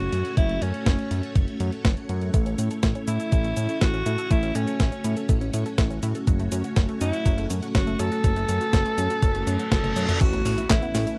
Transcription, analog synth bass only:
0.13 F#2
0.37 F#1
0.62 F#2
0.86 F#1
1.11 F#2
1.36 F#1
1.60 F#2
1.85 F#1
2.09 F#2
2.34 A1
2.58 A2
2.83 A1
3.08 A2
3.32 A1
3.57 A2
3.81 A1
4.06 A2
4.31 A1
4.55 A2
4.80 A1
5.04 A2
5.29 A1
5.54 A2
5.78 A1
6.03 A2
6.27 F#1
6.52 F#2
6.76 F#1
7.01 F#2
7.26 F#1
7.50 F#2
7.75 F#1
7.99 F#2
8.24 F#1
8.49 F#2
8.73 F#1
8.98 F#2
9.22 F#1
9.47 F#2
9.72 F#1
9.96 F#2
10.21 A1
10.45 A2
10.70 A1
10.95 A2

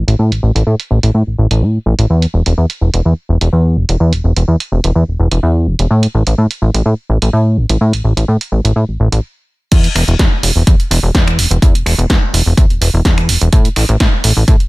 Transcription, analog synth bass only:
0.08 A1
0.19 A2
0.32 A1
0.43 A1
0.55 A1
0.67 A2
0.91 A1
1.03 A1
1.14 A2
1.27 A1
1.38 A1
1.51 A1
1.62 A2
1.86 A1
1.99 A1
2.10 E2
2.34 E1
2.46 E1
2.58 E2
2.81 E1
2.94 E1
3.05 E2
3.29 E1
3.41 E1
3.53 E2
3.77 E1
3.89 E1
4.00 E2
4.13 E1
4.24 E1
4.37 E1
4.48 E2
4.72 E1
4.84 E1
4.95 E2
5.08 E1
5.19 E1
5.32 E1
5.43 E2
5.67 E1
5.79 E1
5.91 A2
6.14 A1
6.27 A1
6.38 A2
6.62 A1
6.74 A1
6.86 A2
7.09 A1
7.22 A1
7.33 A2
7.57 A1
7.70 A1
7.81 A2
7.93 A1
8.04 A1
8.17 A1
8.28 A2
8.52 A1
8.65 A1
8.76 A2
8.88 A1
9.00 A1
9.12 A1
9.72 E2
9.95 E1
10.08 E1
10.19 E2
10.43 E1
10.56 E1
10.67 E2
10.91 E1
11.03 E1
11.15 E2
11.38 E1
11.51 E1
11.62 E2
11.75 E1
11.86 E1
11.98 E1
12.10 E2
12.33 E1
12.46 E1
12.58 E2
12.70 E1
12.81 E1
12.94 E1
13.05 E2
13.29 E1
13.41 E1
13.53 A2
13.76 A1
13.89 A1
14.00 A2
14.24 A1
14.37 A1
14.48 A2

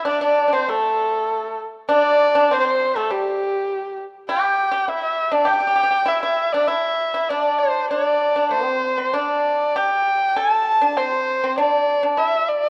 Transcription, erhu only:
0.07 D5
0.24 D5
0.54 C5
0.70 A4
1.91 D5
2.53 C5
2.60 C5
2.67 C5
2.97 A4
3.11 G4
4.30 G5
4.89 E5
5.04 E5
5.34 D5
5.47 G5
6.08 E5
6.23 E5
6.53 D5
6.68 E5
7.29 D5
7.59 C5
7.90 D5
8.52 C5
9.15 D5
9.76 G5
10.37 A5
10.97 C5
11.58 D5
12.18 E5
12.48 D5

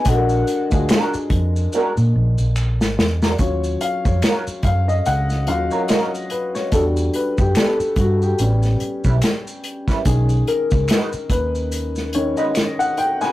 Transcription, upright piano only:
0.04 G#3 D4 F#4 G#4
0.09 A4
0.15 A#4
0.69 G#3 D4 F4 F#4
0.74 G#4
3.39 F#3 C#4 F4 C#5
3.81 F5
4.05 C#5
4.65 F5
4.88 D#5
5.06 F#5
5.47 F#3 C#4 F4 F5
5.71 C#5
5.89 D#5
6.31 B4
6.55 C#5
6.72 G3 D4 F#4 A4
7.15 B4
7.39 G4
7.57 A4
8.00 F#4
8.23 G4
8.39 G3 B3 C#4
10.06 D#3 G#3 C#4 G#4
10.48 A#4
11.31 B4
12.14 D#3 G#3 C#4 C#5
12.37 D#5
12.79 F#5
12.98 G5
13.21 G#5

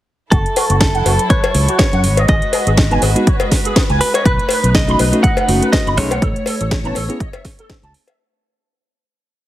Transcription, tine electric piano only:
2.91 G#3 B3 D#4 B4
3.15 G#3 B3 D#4 F#4
4.87 A3 C#4 D#4 F#4
5.12 A3 C#4 D#4 F#4
5.48 A3 C#4 D#4 F#4
5.97 A3 C#4 D#4 G#4
6.84 B3 C#4 E4 B4
7.09 B3 C#4 E4 G#4

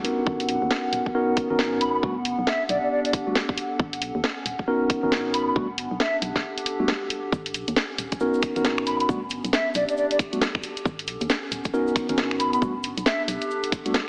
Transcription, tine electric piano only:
0.04 B3 C#4 D#4 F#4 A#4
1.15 B3 C#4 D#4 F#4 A#4
1.50 B3 C#4 D#4 F#4 A#4
2.03 G3 A3 B3 D4 F#4
3.27 G3 A3 B3 D4 F#4
4.68 B3 C#4 D#4 F#4 A#4
5.03 B3 C#4 D#4 F#4 A#4
5.56 G3 A3 B3 D4 F#4
6.80 G3 A3 B3 D4 F#4
8.21 B3 C#4 D#4 F#4 A#4
8.56 B3 C#4 D#4 F#4 A#4
9.09 G3 A3 B3 D4 F#4
10.33 G3 A3 B3 D4 F#4
11.74 B3 C#4 D#4 F#4 A#4
12.09 B3 C#4 D#4 F#4 A#4
12.62 G3 A3 B3 D4 F#4
13.86 G3 A3 B3 D4 F#4

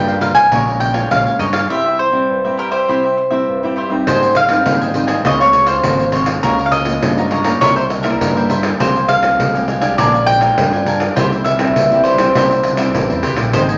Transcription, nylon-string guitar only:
Already playing: G2 G3 A#3 F4
0.20 G3 A#3 F4
0.51 A#2 G#3 C#4 F4
0.66 G#3 C#4 F4
0.93 G#3 C#4 F4
1.10 F3 G#3 C#4 F4
1.69 C3 G3 C4 E4
2.12 G3 C4 E4
2.29 G2
2.45 G3 C4 E4
2.88 C3 G3 C4 E4
3.30 G3 C4 E4
3.47 G2
3.63 G3 C4 E4
3.90 G3 C4 D#4
4.07 G#2
4.49 G3 C4 D#4
4.66 D#3 G3 C4 D#4
4.94 G3 C4 D#4
5.25 C#3 G#3 C4 F4
5.40 G#3 C4 F4
5.84 G#2 G#3 C4 F4
6.12 G#3 C4 F4
6.43 C#3 G#3 A#3 F4
6.85 G#3 A#3 F4
7.02 C#3
7.18 G#3 A#3 F4
7.45 G3 A#3 E4
7.62 C3
8.04 G3 A#3 E4
8.21 G2
8.36 G3 A#3 E4
8.79 F3 G#3 C4 F4
9.21 G#3 C4 F4
9.39 F3
9.54 G#3 C4 F4
9.81 G#3 D4 F4
9.98 A#2
10.40 G#3 D4 F4
10.57 F3
10.73 D4 F4
11.16 C3 G3 C4 E4
11.59 G3 C4 E4
11.76 G2
11.91 G3 C4 E4
12.18 G3 C4 E4
12.34 C3 G3 C4 E4
12.77 G3 C4 E4
12.94 G2
13.10 G3 C4 E4
13.53 G#2 G3 C4 D#4

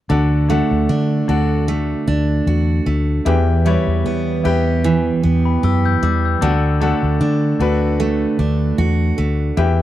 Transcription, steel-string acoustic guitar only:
0.10 D3
0.50 A3
0.89 D4
1.29 F#4
1.68 A3
2.08 D4
2.47 F#4
2.86 A3
3.26 E2
3.66 G3
4.06 B3
4.45 G4
4.84 E3
5.23 B3
5.63 G4
6.03 G3
6.42 D3
6.81 A3
7.21 D4
7.60 F#4
8.00 A3
8.39 D4
8.78 F#4
9.18 A3
9.57 E2

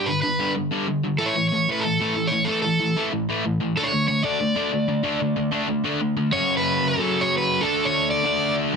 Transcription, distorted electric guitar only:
0.07 G2 D3
0.23 G2 D3
0.39 G2 D3 G3
0.55 G2 D3
0.71 G2 D3 G3
0.87 G2 D3
1.03 G2 D3
1.19 A2 E3 A3
1.35 A2 E3
1.52 A2 E3
1.68 A2 E3 A3
1.84 A2 E3
2.00 A2 E3 A3
2.16 A2 E3
2.32 A2 E3
2.48 A2 E3 A3
2.64 A2 E3
2.80 A2 E3
2.97 A2 E3 A3
3.12 A2 E3
3.29 A2 E3 A3
3.44 A2 E3
3.60 A2 E3
3.76 D3 A3 D4
3.92 D3 A3
4.08 D3 A3
4.24 D3 A3 D4
4.40 D3 A3
4.56 D3 A3 D4
4.72 D3 A3
4.88 D3 A3
5.03 D3 A3 D4
5.20 D3 A3
5.36 D3 A3
5.52 D3 A3 D4
5.68 D3 A3
5.84 D3 A3 D4
6.01 D3 A3
6.17 D3 A3
6.32 F#2 C#3 F#3
6.96 F#2 C#3 F#3
7.61 D3 A3 D4
8.24 D3 A3 D4
8.73 G2

